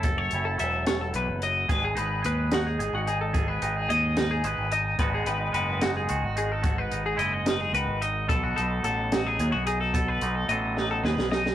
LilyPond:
<<
  \new Staff \with { instrumentName = "Clean electric guitar" } { \time 6/8 \key gis \phrygian \tempo 4. = 73 a'16 cis''8 a'16 e''8 cis''16 a'16 b'8 dis''8 | b'16 gis'16 b'8 b'8 fis'16 gis'8 fis'16 gis'16 a'16~ | a'16 b'8 gis'16 dis''8 b'16 gis'16 b'8 dis''8 | b'16 gis'16 b'8 b'8 fis'16 gis'8 fis'16 gis'16 a'16~ |
a'16 b'8 gis'16 dis''8 b'16 gis'16 b'8 dis''8 | a'16 fis'16 a'8 a'8 fis'16 gis'8 fis'16 gis'16 a'16~ | a'16 b'8 a'16 dis''8 b'16 a'16 b'8 dis''8 | }
  \new Staff \with { instrumentName = "Clean electric guitar" } { \time 6/8 \key gis \phrygian << { a'8 e'8 a'2 | gis'8 dis'8 gis'8 dis'8 gis'8 dis'8 | gis'8 dis'8 gis'8 dis'8 gis'8 dis'8 | <gis b dis' fis'>8 dis'8 fis'8 dis'8 fis'8 dis'8 |
fis'8 dis'8 e'16 fis'16 dis'8 fis'8 dis'8 | a'8 dis'8 a'8 dis'8 gis'8 dis'8 | a'8 dis'8 a'8 dis'8 gis'8 dis'8 | } \\ { fis,4 fis4 e,8 fis,8 | gis,2 gis,4 | gis,2 gis,4 | gis,4 gis4 dis4 |
gis,4 gis4 dis4 | b,4 fis4 fis,4 | b,4 fis4 fis,4 | } >> }
  \new Staff \with { instrumentName = "Fingered electric bass" } { \clef bass \time 6/8 \key gis \phrygian fis,,8 fis,,8 e,,4 b,,16 fis,,8. | gis,,8 gis,,8 dis,4 gis,,16 gis,,8.~ | gis,,8 gis,,8 dis,4 gis,,16 gis,,8. | gis,,8 gis,,8 fis,,4 cis,16 gis,,8.~ |
gis,,8 gis,,8 fis,,4 cis,16 gis,,8. | b,,8 b,,8 a,,4 dis,16 b,,8.~ | b,,8 b,,8 a,,4 dis,16 b,,8. | }
  \new DrumStaff \with { instrumentName = "Drums" } \drummode { \time 6/8 <hh bd>8 hh8 hh8 <hh sn>8 hh8 hh8 | <hh bd>8 hh8 hh8 <hh sn>8 hh8 hh8 | <hh bd>8 hh8 hh8 <hh sn>8 hh8 hh8 | <hh bd>8 hh8 hh8 <hh sn>8 hh8 hh8 |
<hh bd>8 hh8 hh8 <hh sn>8 hh8 hh8 | <hh bd>8 hh8 hh8 <hh sn>8 hh8 hh8 | <hh bd>8 hh8 hh8 sn8 sn16 sn16 sn16 sn16 | }
>>